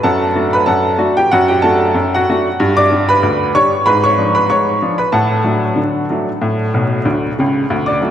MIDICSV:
0, 0, Header, 1, 2, 480
1, 0, Start_track
1, 0, Key_signature, 2, "major"
1, 0, Tempo, 638298
1, 28, Time_signature, 2, 2, 24, 8
1, 6096, End_track
2, 0, Start_track
2, 0, Title_t, "Upright piano"
2, 0, Program_c, 0, 0
2, 25, Note_on_c, 0, 81, 82
2, 29, Note_on_c, 0, 42, 77
2, 32, Note_on_c, 0, 69, 67
2, 33, Note_on_c, 0, 78, 61
2, 170, Control_c, 0, 64, 127
2, 232, Note_off_c, 0, 42, 0
2, 266, Note_on_c, 0, 57, 43
2, 266, Note_on_c, 0, 62, 47
2, 271, Note_on_c, 0, 66, 44
2, 380, Note_off_c, 0, 69, 0
2, 381, Note_off_c, 0, 78, 0
2, 398, Note_off_c, 0, 57, 0
2, 398, Note_off_c, 0, 62, 0
2, 399, Note_on_c, 0, 83, 81
2, 402, Note_off_c, 0, 66, 0
2, 403, Note_off_c, 0, 81, 0
2, 412, Note_on_c, 0, 71, 63
2, 497, Note_on_c, 0, 81, 80
2, 504, Note_off_c, 0, 71, 0
2, 504, Note_on_c, 0, 42, 70
2, 505, Note_off_c, 0, 83, 0
2, 506, Note_on_c, 0, 69, 65
2, 509, Note_on_c, 0, 78, 59
2, 513, Control_c, 0, 64, 0
2, 709, Note_off_c, 0, 42, 0
2, 734, Note_on_c, 0, 57, 51
2, 742, Note_on_c, 0, 62, 48
2, 742, Note_on_c, 0, 66, 61
2, 856, Note_off_c, 0, 69, 0
2, 858, Note_off_c, 0, 78, 0
2, 869, Note_off_c, 0, 57, 0
2, 875, Note_off_c, 0, 62, 0
2, 875, Note_off_c, 0, 66, 0
2, 878, Note_off_c, 0, 81, 0
2, 879, Note_on_c, 0, 79, 88
2, 888, Note_on_c, 0, 67, 61
2, 981, Note_off_c, 0, 67, 0
2, 984, Note_off_c, 0, 79, 0
2, 989, Note_on_c, 0, 78, 93
2, 997, Note_on_c, 0, 42, 84
2, 1004, Note_on_c, 0, 66, 72
2, 1112, Control_c, 0, 64, 127
2, 1115, Note_on_c, 0, 79, 80
2, 1122, Note_off_c, 0, 66, 0
2, 1124, Note_off_c, 0, 78, 0
2, 1129, Note_on_c, 0, 67, 64
2, 1195, Note_off_c, 0, 42, 0
2, 1219, Note_on_c, 0, 81, 85
2, 1221, Note_off_c, 0, 67, 0
2, 1221, Note_off_c, 0, 79, 0
2, 1226, Note_on_c, 0, 57, 46
2, 1230, Note_on_c, 0, 62, 49
2, 1230, Note_on_c, 0, 69, 63
2, 1234, Note_on_c, 0, 66, 54
2, 1357, Note_off_c, 0, 57, 0
2, 1360, Note_off_c, 0, 62, 0
2, 1363, Note_off_c, 0, 66, 0
2, 1461, Note_on_c, 0, 42, 78
2, 1471, Control_c, 0, 64, 0
2, 1577, Note_off_c, 0, 69, 0
2, 1597, Note_off_c, 0, 81, 0
2, 1613, Note_on_c, 0, 78, 79
2, 1622, Note_on_c, 0, 66, 65
2, 1666, Note_off_c, 0, 42, 0
2, 1716, Note_off_c, 0, 66, 0
2, 1723, Note_on_c, 0, 57, 53
2, 1727, Note_on_c, 0, 62, 49
2, 1727, Note_on_c, 0, 66, 61
2, 1849, Note_off_c, 0, 57, 0
2, 1852, Note_off_c, 0, 62, 0
2, 1852, Note_off_c, 0, 66, 0
2, 1949, Note_off_c, 0, 78, 0
2, 1954, Note_on_c, 0, 43, 89
2, 2080, Note_on_c, 0, 86, 96
2, 2083, Control_c, 0, 64, 127
2, 2087, Note_on_c, 0, 74, 75
2, 2152, Note_off_c, 0, 43, 0
2, 2188, Note_on_c, 0, 55, 48
2, 2194, Note_on_c, 0, 62, 54
2, 2306, Note_off_c, 0, 74, 0
2, 2318, Note_off_c, 0, 55, 0
2, 2319, Note_off_c, 0, 86, 0
2, 2322, Note_off_c, 0, 62, 0
2, 2322, Note_on_c, 0, 83, 98
2, 2329, Note_on_c, 0, 71, 74
2, 2428, Control_c, 0, 64, 0
2, 2428, Note_on_c, 0, 38, 71
2, 2629, Note_off_c, 0, 38, 0
2, 2643, Note_off_c, 0, 71, 0
2, 2663, Note_off_c, 0, 83, 0
2, 2669, Note_on_c, 0, 55, 48
2, 2669, Note_on_c, 0, 85, 101
2, 2670, Note_on_c, 0, 62, 59
2, 2674, Note_on_c, 0, 73, 77
2, 2799, Note_off_c, 0, 55, 0
2, 2799, Note_off_c, 0, 62, 0
2, 2890, Note_off_c, 0, 73, 0
2, 2900, Note_on_c, 0, 83, 92
2, 2904, Note_off_c, 0, 85, 0
2, 2908, Note_on_c, 0, 44, 78
2, 2914, Note_on_c, 0, 71, 72
2, 3034, Note_off_c, 0, 71, 0
2, 3035, Note_on_c, 0, 85, 86
2, 3037, Note_off_c, 0, 83, 0
2, 3046, Note_on_c, 0, 73, 66
2, 3047, Control_c, 0, 64, 127
2, 3108, Note_off_c, 0, 44, 0
2, 3140, Note_on_c, 0, 53, 43
2, 3143, Note_on_c, 0, 62, 46
2, 3265, Note_off_c, 0, 73, 0
2, 3269, Note_on_c, 0, 83, 87
2, 3272, Note_off_c, 0, 53, 0
2, 3274, Note_off_c, 0, 62, 0
2, 3275, Note_off_c, 0, 85, 0
2, 3279, Note_on_c, 0, 71, 59
2, 3374, Note_off_c, 0, 71, 0
2, 3376, Note_off_c, 0, 83, 0
2, 3382, Note_on_c, 0, 85, 83
2, 3383, Note_on_c, 0, 44, 60
2, 3386, Control_c, 0, 64, 0
2, 3394, Note_on_c, 0, 73, 63
2, 3586, Note_off_c, 0, 44, 0
2, 3626, Note_on_c, 0, 53, 45
2, 3627, Note_on_c, 0, 62, 50
2, 3738, Note_off_c, 0, 73, 0
2, 3746, Note_on_c, 0, 83, 72
2, 3753, Note_on_c, 0, 71, 56
2, 3757, Note_off_c, 0, 53, 0
2, 3758, Note_off_c, 0, 62, 0
2, 3759, Note_off_c, 0, 85, 0
2, 3851, Note_off_c, 0, 71, 0
2, 3853, Note_on_c, 0, 81, 75
2, 3854, Note_on_c, 0, 45, 76
2, 3856, Note_off_c, 0, 83, 0
2, 3862, Note_on_c, 0, 78, 55
2, 3863, Note_on_c, 0, 69, 55
2, 4033, Control_c, 0, 64, 127
2, 4062, Note_off_c, 0, 45, 0
2, 4090, Note_on_c, 0, 54, 39
2, 4095, Note_on_c, 0, 57, 39
2, 4095, Note_on_c, 0, 62, 39
2, 4226, Note_off_c, 0, 54, 0
2, 4229, Note_off_c, 0, 57, 0
2, 4229, Note_off_c, 0, 62, 0
2, 4329, Note_on_c, 0, 50, 57
2, 4348, Control_c, 0, 64, 0
2, 4540, Note_off_c, 0, 50, 0
2, 4587, Note_on_c, 0, 54, 41
2, 4594, Note_on_c, 0, 57, 38
2, 4594, Note_on_c, 0, 62, 43
2, 4718, Note_off_c, 0, 54, 0
2, 4723, Note_off_c, 0, 57, 0
2, 4723, Note_off_c, 0, 62, 0
2, 4824, Note_on_c, 0, 45, 65
2, 4975, Control_c, 0, 64, 127
2, 5029, Note_off_c, 0, 45, 0
2, 5068, Note_on_c, 0, 47, 56
2, 5070, Note_on_c, 0, 35, 57
2, 5247, Note_off_c, 0, 47, 0
2, 5249, Note_off_c, 0, 35, 0
2, 5303, Note_on_c, 0, 38, 62
2, 5305, Note_on_c, 0, 50, 56
2, 5313, Control_c, 0, 64, 0
2, 5485, Note_off_c, 0, 38, 0
2, 5486, Note_off_c, 0, 50, 0
2, 5518, Note_off_c, 0, 69, 0
2, 5518, Note_off_c, 0, 78, 0
2, 5543, Note_off_c, 0, 81, 0
2, 5554, Note_on_c, 0, 49, 62
2, 5561, Note_on_c, 0, 37, 65
2, 5732, Note_off_c, 0, 49, 0
2, 5737, Note_off_c, 0, 37, 0
2, 5792, Note_on_c, 0, 38, 73
2, 5912, Note_on_c, 0, 86, 71
2, 5919, Control_c, 0, 64, 127
2, 5919, Note_on_c, 0, 74, 60
2, 5995, Note_off_c, 0, 38, 0
2, 6024, Note_on_c, 0, 54, 40
2, 6030, Note_on_c, 0, 57, 40
2, 6036, Note_on_c, 0, 62, 44
2, 6096, Note_off_c, 0, 54, 0
2, 6096, Note_off_c, 0, 57, 0
2, 6096, Note_off_c, 0, 62, 0
2, 6096, Note_off_c, 0, 74, 0
2, 6096, Note_off_c, 0, 86, 0
2, 6096, End_track
0, 0, End_of_file